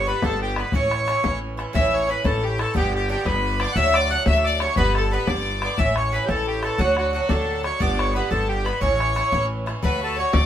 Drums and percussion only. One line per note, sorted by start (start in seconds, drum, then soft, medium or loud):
0.22 bodhran medium
0.56 bodhran medium
0.72 bodhran medium
0.91 bodhran medium
1.08 bodhran medium
1.24 bodhran medium
1.59 bodhran soft
1.75 bodhran medium
2.25 bodhran medium
2.59 bodhran medium
2.75 bodhran medium
3.26 bodhran medium
3.60 bodhran medium
3.76 bodhran medium
3.94 bodhran medium
4.26 bodhran medium
4.60 bodhran medium
4.76 bodhran medium
4.95 bodhran medium
5.27 bodhran medium
5.62 bodhran medium
5.78 bodhran medium
5.96 bodhran medium
6.28 bodhran medium
6.63 bodhran medium
6.78 bodhran medium
6.97 bodhran soft
7.29 bodhran medium
7.64 bodhran medium
7.80 bodhran medium
7.99 bodhran medium
8.31 bodhran medium
8.66 bodhran medium
8.82 bodhran medium
9.00 bodhran soft
9.16 bodhran soft
9.32 bodhran medium
9.67 bodhran soft
9.83 bodhran medium
10.33 bodhran loud